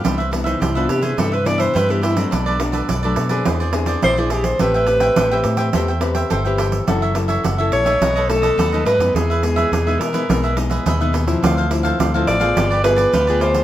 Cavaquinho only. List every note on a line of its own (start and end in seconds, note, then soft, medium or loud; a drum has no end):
0.04 0.17 G4 medium
0.04 0.18 B4 medium
0.04 0.18 C5 medium
0.04 0.17 E5 medium
0.18 0.31 B4 medium
0.18 0.30 C5 medium
0.18 0.31 E5 medium
0.31 muted cavaquinho stroke soft
0.44 0.59 B4 medium
0.44 0.60 C5 medium
0.44 0.59 E5 medium
0.60 0.74 G4 soft
0.60 0.75 B4 medium
0.60 0.74 C5 soft
0.60 0.74 E5 medium
0.75 1.02 B4 medium
0.75 1.02 C5 medium
0.75 1.00 E5 medium
1.01 1.17 B4 medium
1.01 1.17 C5 medium
1.01 1.16 E5 medium
1.17 1.31 G4 soft
1.17 1.32 B4 medium
1.17 1.31 C5 soft
1.17 1.31 E5 medium
1.32 1.45 B4 medium
1.32 1.44 C5 medium
1.32 1.45 E5 medium
1.45 muted cavaquinho stroke soft
1.58 1.73 B4 medium
1.58 1.74 C5 medium
1.58 1.73 E5 medium
1.74 1.88 G4 medium
1.74 1.88 B4 medium
1.74 1.88 C5 medium
1.74 1.88 E5 medium
1.89 2.02 B4 medium
1.89 2.01 C5 medium
1.89 2.02 E5 medium
2.02 2.30 G4 soft
2.02 2.31 B4 medium
2.02 2.31 C5 medium
2.02 2.31 E5 medium
2.31 2.45 D4 medium
2.31 2.45 A4 medium
2.31 2.46 B4 medium
2.31 2.45 D5 medium
2.46 2.59 A4 medium
2.46 2.59 B4 medium
2.46 2.59 D5 medium
2.59 muted cavaquinho stroke soft
2.72 2.88 A4 medium
2.72 2.87 B4 medium
2.72 2.87 D5 medium
2.88 3.02 D4 soft
2.88 3.02 A4 medium
2.88 3.03 B4 medium
2.88 3.02 D5 medium
3.03 3.30 A4 medium
3.03 3.29 B4 medium
3.03 3.28 D5 medium
3.29 3.45 A4 medium
3.29 3.44 B4 medium
3.29 3.44 D5 medium
3.45 3.59 E4 soft
3.45 3.59 G#4 soft
3.45 3.60 C5 soft
3.45 3.59 D5 medium
3.60 3.73 G#4 medium
3.60 3.73 C5 medium
3.60 3.73 D5 medium
3.74 muted cavaquinho stroke soft
3.87 4.02 G#4 medium
3.87 4.02 C5 medium
3.87 4.01 D5 medium
4.03 4.16 E4 medium
4.03 4.17 G#4 medium
4.03 4.17 C5 medium
4.03 4.16 D5 medium
4.18 4.30 G#4 medium
4.18 4.30 C5 medium
4.18 4.31 D5 medium
4.30 4.58 E4 soft
4.30 4.59 G#4 medium
4.30 4.59 C5 medium
4.30 4.59 D5 medium
4.60 4.73 A4 medium
4.60 4.73 C5 medium
4.60 4.74 E5 medium
4.60 4.73 G5 medium
4.74 4.87 C5 medium
4.74 4.87 E5 medium
4.74 4.87 G5 medium
4.87 muted cavaquinho stroke soft
5.01 5.16 C5 medium
5.01 5.15 E5 medium
5.01 5.15 G5 medium
5.16 5.30 A4 medium
5.16 5.30 C5 medium
5.16 5.31 E5 medium
5.16 5.30 G5 medium
5.31 5.59 C5 medium
5.31 5.57 E5 medium
5.31 5.56 G5 medium
5.57 5.73 C5 medium
5.57 5.72 E5 medium
5.57 5.72 G5 medium
5.74 5.87 A4 medium
5.74 5.87 C5 soft
5.74 5.88 E5 medium
5.74 5.87 G5 medium
5.88 6.01 C5 medium
5.88 6.01 E5 medium
5.88 6.01 G5 medium
6.01 muted cavaquinho stroke soft
6.15 6.30 C5 medium
6.15 6.29 E5 medium
6.15 6.29 G5 medium
6.30 6.44 A4 medium
6.30 6.44 C5 medium
6.30 6.44 E5 medium
6.30 6.44 G5 medium
6.45 6.57 C5 medium
6.45 6.58 E5 medium
6.45 6.58 G5 medium
6.58 6.86 A4 soft
6.58 6.86 C5 medium
6.58 6.87 E5 medium
6.58 6.87 G5 medium
6.87 7.01 F#4 medium
6.87 7.01 A4 medium
6.87 7.01 C#5 medium
6.87 7.01 E5 medium
7.02 7.14 A4 medium
7.02 7.15 C#5 medium
7.02 7.15 E5 medium
7.15 muted cavaquinho stroke soft
7.28 7.43 A4 medium
7.28 7.43 C#5 medium
7.28 7.42 E5 medium
7.44 7.57 F#4 soft
7.44 7.58 A4 medium
7.44 7.58 C#5 medium
7.44 7.57 E5 medium
7.58 7.86 A4 medium
7.58 7.85 C#5 medium
7.58 7.84 E5 medium
7.85 8.00 A4 medium
7.85 8.00 C#5 medium
7.85 7.99 E5 medium
8.01 8.14 D#4 soft
8.01 8.15 A4 soft
8.01 8.15 B4 medium
8.01 8.14 D#5 medium
8.16 8.28 A4 medium
8.16 8.28 B4 medium
8.16 8.29 D#5 medium
8.29 muted cavaquinho stroke soft
8.42 8.57 A4 medium
8.42 8.57 B4 medium
8.42 8.56 D#5 medium
8.58 8.71 D#4 medium
8.58 8.72 A4 medium
8.58 8.72 B4 medium
8.58 8.71 D#5 medium
8.72 8.85 A4 medium
8.72 8.86 B4 medium
8.72 8.86 D#5 medium
8.85 9.13 D#4 soft
8.85 9.14 A4 medium
8.85 9.14 B4 medium
8.85 9.15 D#5 medium
9.15 9.28 D#4 medium
9.15 9.29 G#4 soft
9.15 9.29 B4 medium
9.15 9.29 E5 medium
9.30 9.42 G#4 medium
9.30 9.43 B4 medium
9.30 9.43 E5 medium
9.43 muted cavaquinho stroke soft
9.56 9.71 G#4 medium
9.56 9.71 B4 medium
9.56 9.70 E5 medium
9.72 9.85 D#4 soft
9.72 9.86 G#4 soft
9.72 9.86 B4 medium
9.72 9.86 E5 medium
9.87 10.14 G#4 medium
9.87 10.13 B4 medium
9.87 10.12 E5 medium
10.13 10.28 G#4 medium
10.13 10.28 B4 medium
10.13 10.27 E5 medium
10.29 10.42 D#4 soft
10.29 10.43 G#4 soft
10.29 10.43 B4 soft
10.29 10.42 E5 medium
10.44 10.56 G#4 medium
10.44 10.56 B4 medium
10.44 10.57 E5 medium
10.57 muted cavaquinho stroke soft
10.70 10.85 G#4 soft
10.70 10.84 B4 medium
10.70 10.84 E5 medium
10.86 10.99 D#4 medium
10.86 10.99 G#4 medium
10.86 11.00 B4 medium
10.86 10.99 E5 medium
11.01 11.13 G#4 medium
11.01 11.14 B4 medium
11.01 11.14 E5 medium
11.13 11.41 D#4 soft
11.13 11.41 G#4 soft
11.13 11.42 B4 medium
11.13 11.42 E5 medium
11.43 11.56 D4 medium
11.43 11.56 A4 medium
11.43 11.57 C5 medium
11.43 11.56 F5 medium
11.57 11.70 A4 medium
11.57 11.70 C5 medium
11.57 11.70 F5 medium
11.70 muted cavaquinho stroke soft
11.83 11.98 A4 medium
11.83 11.98 C5 medium
11.83 11.97 F5 medium
11.99 12.12 D4 soft
11.99 12.13 A4 medium
11.99 12.13 C5 medium
11.99 12.13 F5 medium
12.14 12.41 A4 medium
12.14 12.40 C5 medium
12.14 12.39 F5 medium
12.40 12.55 A4 medium
12.40 12.55 C5 medium
12.40 12.54 F5 medium
12.56 12.69 F4 soft
12.56 12.70 G4 soft
12.56 12.70 B4 medium
12.56 12.69 D5 medium
12.71 12.83 G4 medium
12.71 12.83 B4 medium
12.71 12.84 D5 medium
12.84 muted cavaquinho stroke soft
12.96 13.12 G4 soft
12.96 13.12 B4 medium
12.96 13.11 D5 medium
13.13 13.26 F4 medium
13.13 13.27 G4 medium
13.13 13.27 B4 medium
13.13 13.26 D5 medium
13.27 13.40 G4 medium
13.27 13.41 B4 medium
13.27 13.41 D5 medium
13.40 13.64 F4 medium
13.40 13.64 G4 medium
13.40 13.64 B4 medium
13.40 13.64 D5 medium